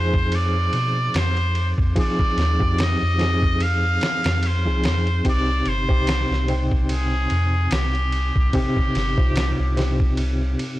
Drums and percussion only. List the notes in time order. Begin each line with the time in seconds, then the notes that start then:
0.14 kick
0.32 ride
0.73 ride
1.14 snare, ride
1.37 ride
1.55 ride
1.78 kick
1.96 kick, ride
2.19 kick
2.38 snare, ride
2.60 kick
2.78 snare, ride
3.19 snare, ride
3.42 kick
3.60 ride
4.01 snare, ride
4.24 snare, ride
4.43 ride
4.84 snare, ride
5.07 ride
5.25 kick, ride
5.66 ride
5.89 kick
6.07 snare, ride
6.32 snare
6.48 ride
6.71 kick
6.89 ride
7.30 ride
7.71 snare, ride
7.95 ride
8.12 ride
8.36 kick
8.53 kick, ride
8.77 kick
8.95 snare, ride
9.18 kick
9.36 snare, ride
9.77 snare, ride
10.00 kick
10.17 ride
10.59 ride